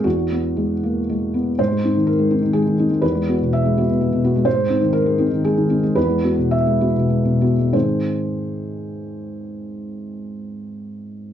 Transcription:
0.04 1.54 E2 soft
0.04 1.33 F#4 medium
0.31 0.72 B3 soft
0.57 0.98 G#3 soft
0.83 1.08 A#3 soft
1.09 1.49 G#3 soft
1.34 1.58 B3 soft
1.59 2.99 G#2 soft
1.59 2.07 C5 medium
1.71 1.90 G#3 soft
1.84 1.94 C4 soft
1.84 1.94 D#4 soft
1.96 2.34 D#3 soft
2.07 2.55 A#4 medium
2.19 2.38 G#3 soft
2.31 2.41 C4 soft
2.31 2.42 D#4 soft
2.42 2.62 D#3 soft
2.53 2.74 G#3 soft
2.53 3.02 G#4 medium
2.66 2.86 D#3 soft
2.78 2.89 C4 soft
2.78 2.90 D#4 soft
2.90 3.02 G#3 soft
3.02 4.41 E2 soft
3.02 3.52 B4 medium
3.15 3.35 G#3 soft
3.28 3.39 B3 soft
3.28 3.40 F#4 soft
3.41 3.79 B2 soft
3.53 4.22 E5 medium
3.65 3.83 G#3 soft
3.77 3.87 B3 soft
3.77 3.87 F#4 soft
3.91 4.08 B2 soft
4.01 4.19 G#3 soft
4.13 4.30 B2 soft
4.24 4.34 B3 soft
4.24 4.34 F#4 soft
4.36 4.46 G#3 soft
4.45 5.92 G#2 soft
4.45 4.93 C5 medium
4.57 4.76 G#3 soft
4.69 4.80 C4 soft
4.69 4.80 D#4 soft
4.81 5.21 D#3 soft
4.93 5.44 A#4 medium
5.06 5.26 G#3 soft
5.18 5.30 C4 soft
5.18 5.30 D#4 soft
5.30 5.51 D#3 soft
5.45 5.65 G#3 soft
5.45 5.96 G#4 medium
5.58 5.78 D#3 soft
5.69 5.81 C4 soft
5.69 5.81 D#4 soft
5.83 5.96 G#3 soft
5.95 7.69 E2 soft
5.95 6.53 B4 medium
6.09 6.32 G#3 soft
6.23 6.37 B3 soft
6.23 6.37 F#4 soft
6.38 6.84 B2 soft
6.51 7.41 E5 medium
6.67 6.90 G#3 soft
6.81 6.94 B3 soft
6.81 6.94 F#4 soft
6.96 7.20 B2 soft
7.10 7.35 G#3 soft
7.25 7.51 B2 soft
7.41 7.56 B3 soft
7.41 7.56 F#4 soft
7.58 7.74 G#3 soft
7.73 11.33 G#2 soft
7.73 11.33 D#3 soft
7.73 11.33 C4 soft
7.73 11.33 D#4 soft
7.73 11.33 G#4 soft
7.73 11.33 C5 soft

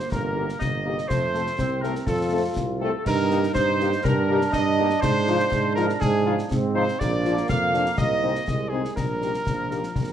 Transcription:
0.00 1.10 A#3 medium
0.00 0.11 C5 loud
0.00 snare medium
0.10 0.52 G1 medium
0.10 0.60 A#4 medium
0.10 0.57 A#4 loud
0.10 concert bass drum medium
0.10 snare medium
0.36 0.45 A#3 medium
0.36 0.45 D#4 medium
0.36 0.45 G4 medium
0.49 snare medium
0.60 1.01 G1 medium
0.60 1.06 D#5 loud
0.60 1.10 D#5 loud
0.60 concert bass drum medium
0.60 snare medium
0.86 0.94 A#3 medium
0.86 0.94 D#4 medium
0.86 0.95 G4 medium
0.98 snare medium
1.08 1.50 F2 medium
1.08 1.54 A3 medium
1.08 1.78 C5 loud
1.08 1.83 C5 loud
1.08 concert bass drum medium
1.08 snare medium
1.08 crash soft
1.34 1.43 A3 medium
1.34 1.43 C4 medium
1.34 1.43 A4 medium
1.34 snare medium
1.47 snare medium
1.58 2.00 C2 medium
1.58 2.04 C4 medium
1.58 concert bass drum medium
1.58 snare medium
1.81 1.92 A3 medium
1.81 1.92 C4 medium
1.81 1.92 A4 medium
1.81 2.07 A#4 medium
1.81 1.95 A#4 loud
1.81 snare soft
1.95 snare medium
2.07 2.48 F2 loud
2.07 2.88 F4 loud
2.07 2.56 A4 medium
2.07 2.53 A4 loud
2.07 concert bass drum loud
2.07 snare medium
2.33 2.41 A3 medium
2.33 2.41 C4 medium
2.33 2.42 A4 medium
2.56 2.94 C2 medium
2.56 concert bass drum medium
2.56 snare medium
2.80 2.91 A3 medium
2.80 2.90 C4 medium
2.80 2.92 A4 loud
2.80 3.04 A4 loud
2.80 2.90 A4 medium
3.05 3.47 G2 loud
3.05 4.00 D#4 loud
3.05 3.55 A#4 loud
3.05 3.52 A#4 loud
3.05 concert bass drum medium
3.05 snare medium
3.05 crash medium
3.31 3.40 A#3 medium
3.31 3.40 D#4 medium
3.31 3.40 G4 medium
3.31 snare medium
3.43 snare medium
3.54 3.96 G2 loud
3.54 4.00 C5 loud
3.54 4.07 C5 loud
3.54 concert bass drum medium
3.54 snare medium
3.80 3.89 A#3 medium
3.80 3.89 D#4 medium
3.80 3.89 G4 medium
3.80 snare medium
3.92 snare medium
4.03 4.45 G2 loud
4.03 6.46 D4 loud
4.03 4.50 A#4 loud
4.03 4.52 A#4 loud
4.03 concert bass drum loud
4.03 snare medium
4.30 4.39 A#3 medium
4.30 4.39 D#4 medium
4.30 4.39 G4 medium
4.41 snare medium
4.53 4.95 G2 loud
4.53 4.99 D#5 loud
4.53 concert bass drum medium
4.53 snare medium
4.80 4.88 A#3 medium
4.80 4.88 D#4 medium
4.80 4.88 G4 medium
4.90 snare medium
5.01 5.44 G#2 loud
5.01 5.76 C5 loud
5.01 5.72 C5 loud
5.01 concert bass drum medium
5.01 snare medium
5.01 crash soft
5.27 5.37 F3 medium
5.27 5.37 D#4 medium
5.27 5.37 F4 medium
5.27 snare medium
5.39 snare medium
5.52 5.93 G#2 loud
5.52 concert bass drum medium
5.52 snare medium
5.75 5.86 F3 medium
5.75 5.86 D#4 medium
5.75 5.86 F4 medium
5.75 5.87 A#4 loud
5.75 5.99 A#4 loud
5.75 snare medium
5.89 snare medium
6.01 6.42 G#2 loud
6.01 6.47 G#4 loud
6.01 6.50 G#4 loud
6.01 concert bass drum medium
6.01 snare medium
6.25 6.35 F3 medium
6.25 6.34 D#4 medium
6.25 6.34 F4 medium
6.39 snare medium
6.50 6.92 G#2 loud
6.50 7.00 C4 loud
6.50 concert bass drum medium
6.50 snare medium
6.75 6.84 F3 medium
6.75 6.84 D#4 medium
6.75 6.84 F4 medium
6.75 7.01 C5 loud
6.75 6.86 C5 loud
6.88 snare medium
6.99 7.41 A#1 loud
6.99 8.44 A#3 loud
6.99 7.45 D5 loud
6.99 7.49 D5 loud
6.99 concert bass drum medium
6.99 snare medium
6.99 crash soft
7.25 7.34 F3 medium
7.25 7.34 D4 medium
7.25 7.34 F4 medium
7.25 snare medium
7.37 snare medium
7.49 7.90 F2 medium
7.49 7.95 F5 loud
7.49 concert bass drum medium
7.49 snare medium
7.74 7.83 F3 medium
7.74 7.83 D4 medium
7.74 7.83 F4 medium
7.74 snare medium
7.86 snare medium
7.98 8.40 C2 loud
7.98 8.70 D#5 loud
7.98 8.69 D#5 loud
7.98 concert bass drum loud
7.98 snare medium
8.23 8.32 G#3 medium
8.23 8.32 C4 medium
8.23 8.32 D#4 medium
8.35 snare medium
8.47 8.89 C2 medium
8.47 8.93 G#3 medium
8.47 concert bass drum medium
8.47 snare medium
8.69 8.81 G#3 medium
8.69 8.82 C4 medium
8.69 8.81 D#4 medium
8.69 8.95 G#4 loud
8.69 8.97 G#4 medium
8.85 snare medium
8.96 9.38 A#1 medium
8.96 9.41 G3 medium
8.96 10.13 A#4 loud
8.96 10.13 A#4 medium
8.96 concert bass drum medium
8.96 snare medium
8.96 crash soft
9.22 9.31 A#3 medium
9.22 9.31 D#4 medium
9.22 9.31 G4 medium
9.22 snare medium
9.34 snare medium
9.46 9.84 A#1 medium
9.46 9.92 F3 medium
9.46 concert bass drum medium
9.46 snare medium
9.71 9.80 A#3 medium
9.71 9.80 D#4 medium
9.71 9.80 G4 medium
9.71 snare medium
9.84 snare medium
9.96 10.13 A#1 medium
9.96 10.13 G3 medium
9.96 concert bass drum medium
9.96 snare medium

